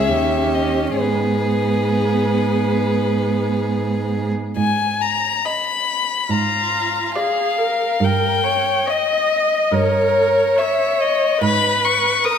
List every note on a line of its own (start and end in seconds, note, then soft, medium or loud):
0.00 0.11 C#2 soft
0.00 0.12 G#4 soft
0.00 0.56 E5 medium
0.09 0.97 D#2 soft
0.09 1.01 C#4 soft
0.09 0.96 G4 soft
0.54 1.01 D#5 soft
0.96 4.32 G#2 soft
0.96 4.37 B3 soft
0.96 4.31 G#4 soft
0.96 4.13 B4 soft
4.57 5.28 G#2 medium
4.57 5.02 G#5 medium
5.01 5.46 A#5 medium
5.45 6.10 D#5 soft
5.45 6.31 B5 medium
6.30 6.98 G#2 medium
6.30 7.17 F4 soft
6.30 7.15 A#5 medium
7.15 7.60 G#4 medium
7.15 7.81 D5 soft
7.15 8.05 F5 medium
7.58 8.01 A#4 soft
8.00 8.70 G2 medium
8.00 8.45 A#4 soft
8.00 8.91 G5 medium
8.43 8.88 C#5 soft
8.87 9.52 C#5 soft
8.87 9.73 D#5 soft
8.87 9.75 D#5 medium
9.72 10.41 G2 medium
9.72 10.57 A#4 soft
9.72 10.59 C#5 medium
10.56 11.41 C#5 medium
10.56 11.02 E5 medium
10.60 11.23 C#5 soft
11.00 11.43 D#5 medium
11.42 12.09 G#2 medium
11.42 12.26 B4 medium
11.42 11.86 B5 medium
11.85 12.26 C#6 medium
12.24 12.38 A#4 soft
12.24 12.38 B4 medium
12.24 12.38 D#6 medium